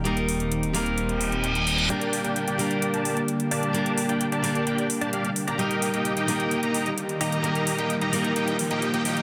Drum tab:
HH |xxoxxxoxxxoxxxox|xxoxxxoxxxoxxxox|xxoxxxoxxxoxxxox|xxoxxxoxxxoxxxox|

HH |xxoxxxoxxxoxxxox|